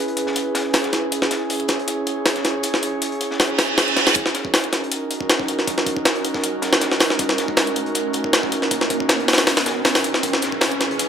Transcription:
Already playing: C#4 E4 G#4 B4
0.08 closed hi-hat
0.17 closed hi-hat
0.27 snare
0.36 closed hi-hat
0.55 snare, closed hi-hat
0.73 snare, closed hi-hat, open hi-hat
0.84 snare, closed hi-hat
0.93 snare, closed hi-hat
1.12 C#5, closed hi-hat
1.22 snare
1.31 snare, closed hi-hat
1.50 closed hi-hat, open hi-hat
1.60 closed hi-hat
1.68 snare, closed hi-hat
1.79 closed hi-hat
1.88 closed hi-hat
2.07 closed hi-hat
2.26 snare, closed hi-hat, open hi-hat
2.36 snare, closed hi-hat
2.44 snare, closed hi-hat
2.63 closed hi-hat
2.74 snare
2.83 closed hi-hat
3.02 closed hi-hat
3.12 closed hi-hat
3.21 closed hi-hat
3.31 snare
3.39 snare, closed hi-hat, open hi-hat, reverse cymbal
3.58 snare, closed hi-hat, open hi-hat
3.78 snare, closed hi-hat, open hi-hat
3.88 closed hi-hat
3.96 snare, closed hi-hat
4.07 snare, closed hi-hat, open hi-hat
4.15 C#4 D#4 F#4 A#4, kick, closed hi-hat, riser
4.26 snare
4.35 snare, closed hi-hat
4.45 kick
4.54 snare, closed hi-hat, open hi-hat
4.64 closed hi-hat
4.73 snare, closed hi-hat
4.84 closed hi-hat
4.92 closed hi-hat
5.11 closed hi-hat
5.21 kick
5.30 snare, closed hi-hat
5.40 kick, snare
5.48 closed hi-hat
5.59 snare
5.67 kick, closed hi-hat
5.78 snare
5.86 kick, closed hi-hat
5.97 kick
6.05 snare, closed hi-hat
6.15 closed hi-hat
6.24 closed hi-hat
6.34 kick, snare
6.43 closed hi-hat
6.62 snare, closed hi-hat
6.73 snare
6.81 snare, closed hi-hat
6.92 snare
7.00 snare, closed hi-hat, open hi-hat
7.10 snare
7.19 kick, closed hi-hat
7.29 snare
7.38 snare, closed hi-hat
7.48 kick
7.57 snare, closed hi-hat, open hi-hat
7.67 closed hi-hat
7.76 closed hi-hat
7.86 closed hi-hat
7.95 closed hi-hat
8.13 closed hi-hat
8.24 kick
8.33 snare, closed hi-hat
8.43 kick, snare
8.52 closed hi-hat
8.62 snare
8.71 kick, closed hi-hat
8.81 snare
8.90 kick, closed hi-hat
9.00 kick
9.09 snare, closed hi-hat
9.19 closed hi-hat
9.28 snare, closed hi-hat, open hi-hat
9.33 snare, open hi-hat
9.38 snare, open hi-hat
9.47 snare, closed hi-hat, open hi-hat
9.57 snare, open hi-hat
9.66 snare, closed hi-hat
9.85 snare, closed hi-hat, open hi-hat
9.95 snare, open hi-hat
10.04 closed hi-hat
10.14 snare
10.23 E4 G#4 B4, kick, closed hi-hat
10.33 snare
10.42 snare, closed hi-hat
10.52 kick
10.61 snare, closed hi-hat, open hi-hat
10.72 closed hi-hat
10.81 snare, closed hi-hat
10.91 closed hi-hat
10.99 closed hi-hat

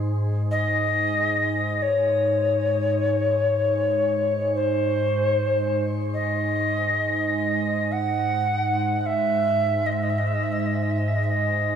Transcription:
Already playing: G#2
0.51 D#5
1.82 C#5
3.90 G#2
4.55 C5
6.13 D#5
7.91 F#5
9.00 F#5
9.06 E5
9.86 D#5
9.92 E5
10.02 D#5
10.09 E5
10.18 D#5
10.27 E5
10.34 D#5
10.43 E5
10.52 D#5
10.59 E5
10.66 D#5
10.74 E5
10.82 D#5
10.90 E5
10.98 D#5
11.07 E5
11.15 D#5
11.23 E5
11.30 D#5

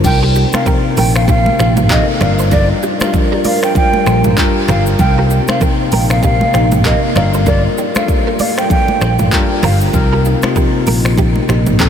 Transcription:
0.03 C2 C3 A#3 C4 D#4 A#4 G5, kick, crash, low conga, shaker
0.23 G4 A#4
0.36 D#4 G4, shaker
0.53 C3 C4 D#4 A#4 F5, finger snap, cross-stick, high conga, shaker
0.66 G4 A#4, kick, low conga, shaker
0.97 A#1 G4 A#4 G5, open hi-hat, high conga, shaker
1.16 F5, finger snap, cross-stick, shaker
1.28 D#4 G4 F5, kick, low conga, shaker
1.46 high conga
1.59 A#1 D#4 G4, finger snap, cross-stick, shaker
1.77 mid tom, high conga, shaker
1.89 C3 C4 D#4 G4 A4 A#4 D#5, kick, clap, shaker
2.20 G1 G3 D4 F4 A#4 D5 F5, finger snap, cross-stick, mid tom, low conga, shaker
2.39 A4 C5, shaker
2.51 G4 A#4 D5, kick, low conga, shaker
2.83 D#4 G4, shaker
3.00 G3 D4 F4 A#4 F5, finger snap, cross-stick, high conga, shaker
3.14 kick, low conga, shaker
3.32 G4 A#4
3.45 A#4 D5 F5, open hi-hat, high conga, shaker
3.63 G5, finger snap, cross-stick, shaker
3.75 G5, kick, low conga, shaker
3.93 high conga
4.07 A#1 A4 C5, finger snap, cross-stick, shaker
4.24 mid tom, high conga, shaker
4.37 G3 D4 F4 A#4, kick, clap, shaker
4.68 G1 G4 A#4 F5, finger snap, cross-stick, mid tom, low conga, shaker
4.86 shaker
4.98 C2 C3 A#3 C4 D#4 A#4 G5, kick, low conga, shaker
5.18 G4 A#4
5.30 D#4 G4, shaker
5.47 C3 C4 D#4 C5 F5, finger snap, cross-stick, high conga, shaker
5.61 G4 A#4, kick, low conga, shaker
5.92 A#1 G4 A#4 G5, open hi-hat, high conga, shaker
6.10 F5, finger snap, cross-stick, shaker
6.23 D#4 G4 F5, kick, low conga, shaker
6.41 high conga
6.54 A#1 D#4 G4, finger snap, cross-stick, shaker
6.72 mid tom, high conga, shaker
6.84 C3 C4 D#4 G4 A#4 D#5, kick, clap, shaker
7.15 G1 G3 A#3 D4 F4 A#4 D5 F5, finger snap, cross-stick, mid tom, low conga, shaker
7.34 A4 C5, shaker
7.46 G4 A#4 D5, kick, low conga, shaker
7.78 D#4 G4, shaker
7.94 G3 D4 F4 A4 F5, finger snap, cross-stick, high conga, shaker
8.08 kick, shaker
8.27 G4 A#4
8.39 A#4 D5 F5, open hi-hat, high conga, shaker
8.58 G5, finger snap, cross-stick, shaker
8.70 G5, kick, low conga, shaker
8.88 high conga
9.01 A#1 A4 C5, finger snap, cross-stick, shaker
9.19 mid tom, high conga, shaker
9.31 G3 D4 F4 A#4, kick, clap, shaker
9.63 G1 G4 A#4 F5, finger snap, cross-stick, mid tom, open hi-hat, low conga, shaker
9.81 shaker
9.93 C2 C3 A#3 C4 D#4 A#4, kick, low conga, shaker
10.13 G4 A#4
10.25 D#4 G4, shaker
10.42 C3 C4 D#4 F4, finger snap, cross-stick, high conga, shaker
10.56 G4 A#4, kick, low conga, shaker
10.87 A#1 G4 A#4, open hi-hat, high conga, shaker
11.05 finger snap, cross-stick, shaker
11.18 D#4 G4, kick, low conga, shaker
11.36 high conga
11.49 A#1 D#4 G4, finger snap, cross-stick, shaker
11.67 mid tom, high conga, shaker
11.79 C3 C4 D#4 G4 A4 A#4, kick, clap, shaker

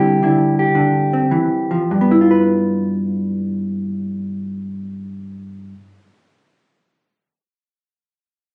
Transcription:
Already playing: D3 G3 C4 E4 G4
0.23 D3 E4
0.59 G4
0.75 D3
1.13 C4
1.31 E3
1.71 F3
1.91 G2
2.01 B3
2.11 E4
2.21 F4
2.31 B4

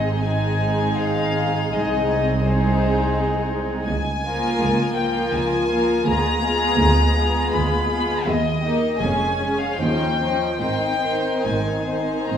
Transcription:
Already playing: G#1 G#2 G#3 C4 D#4 G#4 D#5
0.22 G#3 C4 D#4 G#4 G#5
0.99 F5
1.73 C2 G#3 C4 D#4 G#4 D#5
2.45 G#3 C4 D#4 G#4 C5
3.86 C#2 G#5
4.25 F3 A#3 F4 A#4
4.62 C#2
4.97 F3 A#3 F4 A#4 G5
5.33 C#2 G#5
5.70 F3 A#3 F4 A#4
6.06 D2 G#3 B3 F4 G#4 A#5
6.43 G#3 B3 F4 G#4
6.80 D2
7.18 G#3 B3 F4 G#4
7.53 D2 B5
7.91 G#3 B3 F4 G#4
8.27 D#2 D#5
8.62 A#3 D#4 G4
9.00 F1 F2 G#3 C#4 G#4 G#5
9.39 G#3 C#4 G#4
9.60 F5
9.78 D#2 F3 C#4 D#4 C5 G5
10.19 F3 C#4 D#4 C5
10.59 G#1 G#2 D#3 C4 D#4 C5 G5
11.03 D#3 C4 D#4 C5
11.45 G#1 G#2 G#5
11.87 D#3 C4 D#4 C5
12.29 G#1 G#2 A#5

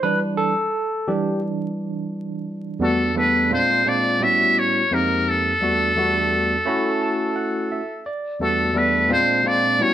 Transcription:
0.03 E3 G3 D4 B4
0.37 A4
1.07 E3 G3 D4 G4
2.79 E2 G3 A3 B3 D4 F#4
2.83 A4
3.15 E2 G3 A3 B3 D4 A4 B4
3.50 A#2 G#3 C4 D4 F4
3.54 C5
3.85 A#2 G#3 C4 D4 F4 D5
4.20 A2 G3 B3 C#4 E4 F#4 E5
4.59 C#5
4.91 F2 G#3 A#3 C4 D#4 G4 A#4
5.29 A4
5.60 E2 G3 A3 B3 D4 F#4
5.96 E2 G3 A3 B3 D4 F#4
6.65 A3 C#4 E4 F#4 B5
6.89 A5
7.02 A5
7.36 F#5
7.72 E5
8.06 D5
8.40 E2 G3 A3 B3 D4 F#4 A4
8.74 E2 G3 A3 B3 D4 A4 B4
9.09 A#2 G#3 C4 D4 F4 C5
9.43 A#2 G#3 C4 D4 F4
9.48 D5
9.79 A2 G3 B3 C#4 E4 F#4 C#5

